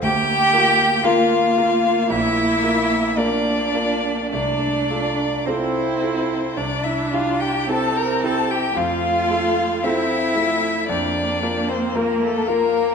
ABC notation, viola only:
X:1
M:4/4
L:1/8
Q:1/4=56
K:F
V:1 name="Viola"
B,8 | A,2 E2 D2 C2 | A,2 C A, B,4 |]